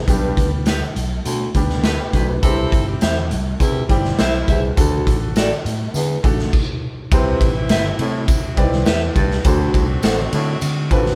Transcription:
0.07 fingered electric bass B1, baritone saxophone G2, upright piano G3 B3 D4 G4, kick, closed hi-hat, tambourine
0.37 fingered electric bass D2, kick, closed hi-hat, tambourine
0.66 clean electric guitar D4 G4 B4, snare, closed hi-hat, tambourine
0.81 high conga
0.96 fingered electric bass B1, closed hi-hat, tambourine, low conga
1.25 baritone saxophone D2, fingered electric bass B2, closed hi-hat, tambourine, muted conga
1.54 fingered electric bass D2, upright piano G3 B3 D4 G4, kick, closed hi-hat, tambourine, muted conga
1.69 snare, high conga
1.84 clean electric guitar D4 G4 B4, upright piano A4, snare, closed hi-hat, tambourine
2.00 upright piano B3 G4
2.13 fingered electric bass B1, baritone saxophone D2, clean electric guitar D4 G4 B4, kick, closed hi-hat, tambourine, high conga
2.28 upright piano D4 B4, low conga
2.42 fingered electric bass C2, baritone saxophone C3, upright piano G3 C4 D4 G4, saxophone section C4 E4 A4, kick, closed hi-hat, tambourine
2.49 upright piano E4
2.72 fingered electric bass G1, kick, closed hi-hat, tambourine, muted conga
2.87 saxophone section C4 E4 G4
3.01 fingered electric bass E2, clean electric guitar G4 C5 E5, snare, closed hi-hat, tambourine, muted conga
3.16 high conga
3.31 fingered electric bass C2, closed hi-hat, tambourine, muted conga, low conga
3.60 baritone saxophone E2, fingered electric bass C3, saxophone section G3 C4 E4, kick, closed hi-hat, tambourine, muted conga
3.89 fingered electric bass G1, upright piano G3 C4 E4 G4, saxophone section G3 B3 D4, kick, closed hi-hat, tambourine
4.04 snare, high conga
4.19 fingered electric bass B1, saxophone section G3 C4 E4, clean electric guitar G4 C5 E5, snare, closed hi-hat, tambourine
4.48 fingered electric bass C2, baritone saxophone E2, clean electric guitar G4 C5 E5, kick, closed hi-hat, tambourine, muted conga, high conga
4.63 low conga
4.77 fingered electric bass D2, baritone saxophone D2, upright piano A3 D4 F#4 A4, kick, closed hi-hat, tambourine
5.07 fingered electric bass A1, kick, closed hi-hat, tambourine
5.21 high conga
5.36 clean electric guitar F#4 A4 D5, snare, closed hi-hat, tambourine
5.51 high conga
5.65 fingered electric bass A2, closed hi-hat, tambourine, muted conga, low conga
5.94 baritone saxophone E2, fingered electric bass D3, closed hi-hat, tambourine, muted conga
6.23 fingered electric bass A1, upright piano A3 D4 F#4 A4, kick, closed hi-hat, tambourine, muted conga
6.39 snare, high conga
6.53 kick, crash
7.11 fingered electric bass C2, baritone saxophone C3, saxophone section E3 C4 E4, upright piano C4 E4 G4 B4 C5, kick, ride, tambourine
7.41 fingered electric bass A1, kick, ride, tambourine, muted conga
7.69 fingered electric bass G1, clean electric guitar G4 B4 E5, snare, ride, tambourine
7.84 high conga
7.99 baritone saxophone A2, fingered electric bass C3, ride, tambourine, muted conga, low conga
8.28 kick, ride, tambourine, muted conga, low conga
8.56 fingered electric bass C2, upright piano C4 D#4 G4 B4 D5, kick, ride, tambourine, muted conga
8.63 upright piano E4
8.72 fingered electric bass C2, snare, high conga
8.86 fingered electric bass E2, clean electric guitar G4 B4 E5, snare, ride, tambourine
9.15 fingered electric bass C2, baritone saxophone G2, kick, ride, tambourine, high conga
9.30 snare, low conga
9.44 baritone saxophone D2, fingered electric bass D2, saxophone section C4 D4 F#4, upright piano C4 D4 F#4 A4 C5, kick, ride, tambourine
9.74 fingered electric bass C2, kick, ride, tambourine
10.03 fingered electric bass A1, clean electric guitar A4 C5 F#5, snare, ride, tambourine
10.18 high conga
10.32 baritone saxophone A2, fingered electric bass D3, ride, tambourine, low conga
10.61 fingered electric bass D3, ride, tambourine, muted conga, low conga
10.91 fingered electric bass A1, upright piano C4 D4 F4 A4 B4, kick, ride, tambourine
10.98 upright piano F#4
11.05 snare, high conga

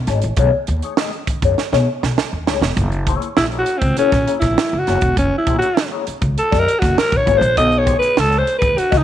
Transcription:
0.07 upright bass G#1, clean electric guitar A3 D#4 G#4 C#5, snare, closed hi-hat
0.22 upright bass A1, muted clean electric guitar stroke, closed hi-hat
0.36 upright bass B1, clean electric guitar A3 D#4 G#4 C#5, kick, closed hi-hat
0.53 muted clean electric guitar stroke
0.67 upright bass D#2, muted clean electric guitar stroke, closed hi-hat
0.82 clean electric guitar A3 D#4 G#4 C#5, closed hi-hat
0.97 clean electric guitar A3 D#4 G#4 D#5, snare
1.13 closed hi-hat
1.27 muted upright bass stroke, muted clean electric guitar stroke, kick, closed hi-hat
1.42 upright bass F#2, clean electric guitar D#4 G#4 C#5, kick, closed hi-hat
1.46 clean electric guitar A3
1.57 muted upright bass stroke, muted clean electric guitar stroke, snare
1.72 upright bass B2, clean electric guitar A3 D#4 G#4 C#5, snare
1.88 muted clean electric guitar stroke
2.01 upright bass B1, muted clean electric guitar stroke, snare
2.17 muted clean electric guitar stroke, snare
2.33 upright bass D#2
2.46 upright bass C#2, clean electric guitar A3 D#4 G#4 C#5, snare
2.61 upright bass E1, snare
2.77 upright bass F#1, kick, closed hi-hat
2.92 closed hi-hat
3.07 clean electric guitar A#3 E4 G#4 C#5, kick, closed hi-hat
3.22 closed hi-hat
3.37 upright bass A#1, alto saxophone E4, muted clean electric guitar stroke, snare
3.52 clean electric guitar A#3 E4 G#4 C#5, closed hi-hat
3.59 alto saxophone F#4
3.66 muted clean electric guitar stroke, closed hi-hat
3.79 upright bass C#2, alto saxophone C4, muted clean electric guitar stroke, kick, closed hi-hat
3.97 clean electric guitar A#3 E4 G#4 C#5, alto saxophone C#4, muted upright bass stroke, closed hi-hat
4.12 upright bass A#1, kick, snare, closed hi-hat
4.27 clean electric guitar A#3 E4 G#4 C#5, closed hi-hat
4.39 upright bass A#1, alto saxophone E4, kick, snare, closed hi-hat
4.58 snare
4.73 upright bass F#1
4.79 alto saxophone F#4
4.87 upright bass F#1, clean electric guitar A#3 E4 G#4 C#5, snare, closed hi-hat
5.01 upright bass E1, kick, closed hi-hat
5.17 upright bass F#1, alto saxophone C#4, kick, closed hi-hat
5.38 alto saxophone E4
5.46 upright bass A#1, clean electric guitar A#3 E4 G#4 C#5, kick, closed hi-hat
5.58 alto saxophone F#4, closed hi-hat
5.77 muted clean electric guitar stroke, snare
5.91 clean electric guitar A#3 E4 G#4 C#5
6.07 muted upright bass stroke, muted clean electric guitar stroke, closed hi-hat
6.21 upright bass C#2, muted clean electric guitar stroke, kick, closed hi-hat
6.36 alto saxophone A4, muted clean electric guitar stroke, muted upright bass stroke, closed hi-hat
6.51 upright bass F#2, clean electric guitar A#3 E4 G#4 D#5, kick, snare, closed hi-hat
6.59 alto saxophone A#4
6.67 muted clean electric guitar stroke, closed hi-hat
6.79 upright bass F#1, alto saxophone F#4, muted clean electric guitar stroke, kick, snare, closed hi-hat
6.98 alto saxophone A#4, snare
7.12 upright bass A#1, muted clean electric guitar stroke, kick, closed hi-hat
7.17 alto saxophone C#5
7.26 upright bass G#1, clean electric guitar A#3 E4 G#4 C#5, kick, closed hi-hat
7.38 upright bass A#1, alto saxophone C5, muted clean electric guitar stroke
7.42 closed hi-hat
7.57 upright bass B1, alto saxophone D#5, kick, closed hi-hat
7.72 closed hi-hat
7.79 alto saxophone C#5
7.84 clean electric guitar A3 D#4 G#4 C#5, kick, closed hi-hat
7.99 alto saxophone B4, closed hi-hat
8.15 upright bass C#2, muted clean electric guitar stroke, snare
8.19 alto saxophone A4
8.30 clean electric guitar A3 D#4 G#4 C#5, closed hi-hat
8.38 alto saxophone C5
8.45 muted clean electric guitar stroke, closed hi-hat
8.58 upright bass D#2, alto saxophone B4, muted clean electric guitar stroke, kick
8.63 closed hi-hat
8.76 alto saxophone F#4, muted clean electric guitar stroke, muted upright bass stroke, closed hi-hat
8.91 upright bass C#2, clean electric guitar A3 D#4 G#4 D#5, kick, snare, closed hi-hat
8.97 alto saxophone D#4

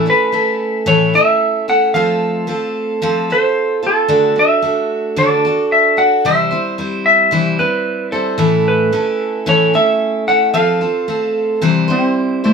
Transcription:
0.06 steel-string acoustic guitar A3 C#4 E4 A4
0.10 electric slide guitar B4
0.32 steel-string acoustic guitar A3 C#4 E4 A4
0.86 steel-string acoustic guitar A2 E3 A3 C#4 E4 A4, electric slide guitar C#5
1.14 steel-string acoustic guitar A3 C#4 E4 A4, electric slide guitar E5
1.68 steel-string acoustic guitar A3 C#4 E4 A4, electric slide guitar F#5
1.94 steel-string acoustic guitar F3 A3 C4 F4 A4, electric slide guitar F5
2.47 steel-string acoustic guitar A3 C4 F4 A4
3.02 steel-string acoustic guitar F3 A3 C4 F4 A4
3.30 steel-string acoustic guitar C4 F4 A4, electric slide guitar C5
3.83 steel-string acoustic guitar C4 F4 A4
3.87 electric slide guitar A4
4.08 steel-string acoustic guitar D3 A3 D4 F#4 A4
4.36 steel-string acoustic guitar D4 F#4 A4, electric slide guitar E5
4.62 steel-string acoustic guitar A3 D4 F#4 A4
5.16 steel-string acoustic guitar D3 A3 D4 F#4 A4, electric slide guitar D5
5.45 steel-string acoustic guitar D4 F#4 A4
5.72 electric slide guitar E5
5.97 steel-string acoustic guitar D4 F#4 A4, electric slide guitar F#5
6.25 steel-string acoustic guitar C3 E3 G3 C4 E4 C5, electric slide guitar E5
6.51 steel-string acoustic guitar G3 C4 E4 C5
6.78 steel-string acoustic guitar G3 C4 E4 C5
7.06 electric slide guitar E5
7.31 steel-string acoustic guitar C3 E3 G3 C4 E4 C5
7.59 steel-string acoustic guitar G3 C4 E4, electric slide guitar B4
8.12 steel-string acoustic guitar G3 C4 E4 C5, electric slide guitar A4
8.38 steel-string acoustic guitar A2 E3 A3 C#4 E4 A4
8.68 electric slide guitar B4
8.92 steel-string acoustic guitar A3 C#4 E4 A4
9.46 steel-string acoustic guitar A2 E3 A3 C#4 E4 A4, electric slide guitar C#5
9.74 steel-string acoustic guitar A3 C#4 E4 A4, electric slide guitar E5
10.28 steel-string acoustic guitar A3 C#4 E4 A4, electric slide guitar F#5
10.54 steel-string acoustic guitar F3 A3 C4 F4 A4, electric slide guitar F5
10.81 steel-string acoustic guitar C4 F4 A4
11.08 steel-string acoustic guitar A3 C4 F4 A4
11.61 steel-string acoustic guitar C3 E3 G3 C4 E4 C5
11.88 steel-string acoustic guitar G3 C4 E4 C5, electric slide guitar C4
12.44 steel-string acoustic guitar G3 C4 E4 C5, electric slide guitar A3

